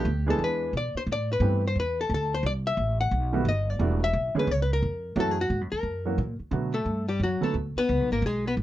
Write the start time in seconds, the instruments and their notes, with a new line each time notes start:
Already playing: hollow-body jazz guitar G4
0.05 upright bass D2
0.26 grand piano E3 G#3 B3 D4 G#4, hollow-body jazz guitar A4
0.39 upright bass E2
0.44 hollow-body jazz guitar B4
0.73 upright bass B2
0.77 hollow-body jazz guitar D5
0.95 hollow-body jazz guitar C5, muted upright bass stroke
1.07 upright bass A2
1.12 hollow-body jazz guitar D5
1.33 hollow-body jazz guitar B4
1.40 upright bass G2, grand piano E3 A3 B3 C4 G4
1.68 hollow-body jazz guitar C5
1.75 upright bass E2
1.80 hollow-body jazz guitar B4
2.01 hollow-body jazz guitar A4
2.10 upright bass D2
2.14 hollow-body jazz guitar A4
2.34 hollow-body jazz guitar C5
2.43 upright bass C2, hollow-body jazz guitar D5
2.67 hollow-body jazz guitar E5
2.77 upright bass A1
3.01 hollow-body jazz guitar F#5
3.11 upright bass B1
3.33 grand piano D#3 G3 A3 B3 F#4
3.45 upright bass G1, hollow-body jazz guitar D#5
3.70 hollow-body jazz guitar D5
3.79 upright bass E1, grand piano E3 G3 A3 D4 F#4
4.04 hollow-body jazz guitar E5
4.13 upright bass B1
4.34 grand piano D3 G#3 B3 C#4 G#4, muted upright bass stroke
4.39 hollow-body jazz guitar B4
4.47 upright bass C#2
4.51 hollow-body jazz guitar C#5
4.62 hollow-body jazz guitar B4
4.73 hollow-body jazz guitar A#4
4.82 upright bass F2
5.16 upright bass F#2, grand piano E3 F#3 A3 C#4 F#4
5.20 hollow-body jazz guitar A4
5.31 hollow-body jazz guitar G#4
5.41 hollow-body jazz guitar F#4
5.50 upright bass G#2
5.61 upright bass F#2
5.72 upright bass E2, hollow-body jazz guitar A#4
5.83 upright bass F#2
6.05 grand piano E3 F#3 A#3 C#4 F#4
6.18 upright bass A#2
6.40 muted upright bass stroke
6.51 upright bass B2, grand piano D3 F#3 A3 B3 F#4
6.74 hollow-body jazz guitar A3 A4
6.86 upright bass G2
7.09 hollow-body jazz guitar G3 G4
7.20 upright bass F#2, hollow-body jazz guitar F#4
7.24 hollow-body jazz guitar F#3
7.41 grand piano D3 F#3 A3 B3 A4, hollow-body jazz guitar A3 A4, muted upright bass stroke
7.54 upright bass D2
7.76 hollow-body jazz guitar B3 B4, muted upright bass stroke
7.89 upright bass C#2
8.00 upright bass B1
8.11 upright bass G#1, hollow-body jazz guitar A#3 A#4
8.22 upright bass B1
8.26 hollow-body jazz guitar G#3 G#4
8.47 hollow-body jazz guitar B3 B4
8.57 upright bass G#1